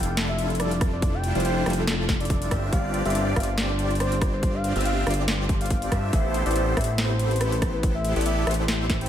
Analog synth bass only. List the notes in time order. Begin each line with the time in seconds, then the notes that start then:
Already playing: F1
1.35 F1
1.66 F1
2.51 G1
2.73 G1
3.06 G1
3.36 G1
4.76 G1
5.07 G1
5.92 G2
6.13 A1
6.46 A1
6.77 A1
8.16 A1
8.47 A1